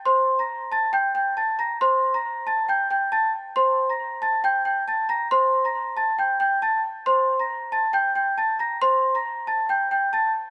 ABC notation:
X:1
M:4/4
L:1/16
Q:1/4=137
K:Cdor
V:1 name="Celesta"
[cc']3 [bb']3 [aa']2 [gg']2 [gg']2 [aa']2 [bb']2 | [cc']3 [bb']3 [aa']2 [gg']2 [gg']2 [aa']2 z2 | [cc']3 [bb']3 [aa']2 [gg']2 [gg']2 [aa']2 [bb']2 | [cc']3 [bb']3 [aa']2 [gg']2 [gg']2 [aa']2 z2 |
[cc']3 [bb']3 [aa']2 [gg']2 [gg']2 [aa']2 [bb']2 | [cc']3 [bb']3 [aa']2 [gg']2 [gg']2 [aa']2 z2 |]